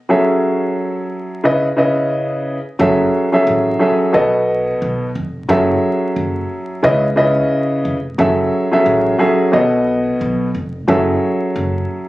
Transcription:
0.09 1.44 F#3 medium
0.09 1.43 C#4 medium
0.09 1.44 G#4 medium
0.09 1.45 A4 medium
0.09 1.45 E5 loud
1.44 1.66 C#3 medium
1.44 1.66 C#4 medium
1.44 1.66 E4 medium
1.44 1.67 B4 medium
1.44 1.67 D#5 loud
1.76 2.56 C#3 medium
1.76 2.57 C#4 medium
1.76 2.57 E4 medium
1.76 2.57 B4 medium
1.76 2.57 D#5 loud
2.79 3.07 F#1 loud
2.79 3.27 F#3 medium
2.79 3.28 C#4 medium
2.79 3.28 G#4 medium
2.79 3.28 A4 medium
2.79 3.28 E5 loud
3.32 3.77 F#3 medium
3.32 3.77 C#4 medium
3.32 3.77 G#4 medium
3.32 3.77 A4 medium
3.32 3.78 E5 loud
3.47 3.74 A1 loud
3.79 4.13 F#3 medium
3.79 4.14 C#4 medium
3.79 4.14 G#4 medium
3.79 4.12 A4 medium
3.79 4.14 E5 loud
4.13 4.69 B1 medium
4.13 5.07 B2 medium
4.13 5.08 B3 medium
4.13 5.08 A4 medium
4.13 5.08 C#5 medium
4.13 5.08 D#5 loud
4.82 5.09 B1 medium
5.15 5.43 F1 medium
5.48 5.76 F#1 loud
5.48 6.83 F#3 medium
5.48 6.82 C#4 medium
5.48 6.84 G#4 medium
5.48 6.84 A4 medium
5.48 6.84 E5 loud
6.16 6.44 F#1 loud
6.83 7.38 C#2 loud
6.83 7.05 C#3 medium
6.83 7.05 C#4 medium
6.83 7.06 E4 medium
6.83 7.06 B4 medium
6.83 7.06 D#5 loud
7.16 7.96 C#3 medium
7.16 7.96 C#4 medium
7.16 7.96 E4 medium
7.16 7.96 B4 medium
7.16 7.96 D#5 loud
7.85 8.12 F1 medium
8.18 8.46 F#1 loud
8.18 8.67 F#3 medium
8.18 8.67 C#4 medium
8.18 8.67 G#4 medium
8.18 8.67 A4 medium
8.18 8.68 E5 loud
8.71 9.16 F#3 medium
8.71 9.16 C#4 medium
8.71 9.17 G#4 medium
8.71 9.17 A4 medium
8.71 9.17 E5 loud
8.86 9.13 A1 loud
9.18 9.53 F#3 medium
9.18 9.53 C#4 medium
9.18 9.53 G#4 medium
9.18 9.51 A4 medium
9.18 9.54 E5 loud
9.52 10.08 B1 medium
9.52 10.47 B2 medium
9.52 10.47 B3 medium
9.52 10.47 A4 medium
9.52 10.47 C#5 medium
9.52 10.48 D#5 loud
10.21 10.48 B1 medium
10.55 10.82 F1 medium
10.88 11.15 F#1 loud
10.88 12.09 F#3 medium
10.88 12.09 C#4 medium
10.88 12.09 G#4 medium
10.88 12.09 A4 medium
10.88 12.09 E5 loud
11.56 11.83 F#1 loud

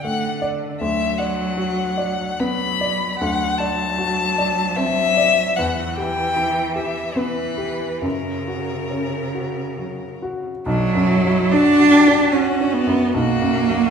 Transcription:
0.00 0.78 F#2 soft
0.00 0.84 D4 soft
0.00 0.42 D5 soft
0.04 0.82 D3 medium
0.04 0.67 A3 soft
0.04 0.43 F#5 medium
0.42 0.81 D5 medium
0.81 3.17 D2 medium
0.81 2.39 F#3 medium
0.81 1.20 E5 medium
1.18 1.82 D5 soft
1.18 2.42 F#5 medium
1.57 2.24 F#4 medium
1.97 2.65 D5 medium
2.39 3.18 F#3 medium
2.39 3.05 B3 medium
2.39 3.19 B5 medium
2.81 3.21 D5 medium
3.19 5.53 D2 medium
3.19 5.58 F#3 medium
3.19 3.60 F#5 medium
3.59 4.22 D5 soft
3.59 4.78 A5 loud
3.98 4.61 F#4 soft
4.38 5.02 D5 medium
4.76 5.41 C4 medium
4.76 5.58 E5 loud
5.17 5.57 D5 medium
5.56 8.01 E2 medium
5.56 7.16 E3 medium
5.56 5.97 F#5 medium
5.96 6.62 G4 soft
5.96 6.76 G5 medium
6.36 7.01 E4 medium
6.76 7.42 G4 medium
6.76 7.19 E5 medium
7.16 8.05 E3 medium
7.16 7.85 B3 soft
7.16 8.03 B4 medium
7.58 8.03 G4 soft
8.02 10.61 F#2 soft
8.02 10.45 C#3 medium
8.02 10.19 A#4 medium
8.48 9.18 F#4 soft
8.91 9.61 C#4 soft
9.35 10.05 F#4 soft
9.78 10.49 F#3 soft
10.22 10.66 F#4 medium
10.66 13.08 B1 medium
10.66 11.53 F#3 loud
10.66 11.10 D4 medium
10.95 11.41 F#2 medium
11.09 11.53 E4 medium
11.25 11.69 F#3 medium
11.52 12.33 D4 loud
11.52 11.96 D4 medium
11.52 11.94 F#4 medium
11.80 12.22 F#4 medium
11.92 12.36 G4 medium
12.07 12.49 D4 medium
12.32 12.75 C#4 medium
12.32 12.76 F#4 medium
12.32 13.13 F#4 medium
12.60 13.02 D4 medium
12.73 13.14 B3 loud
12.87 13.13 F#2 medium
13.13 13.90 B1 medium
13.13 13.90 A#3 loud
13.13 13.90 F#4 medium
13.42 13.83 F#2 medium
13.67 13.90 F#3 medium

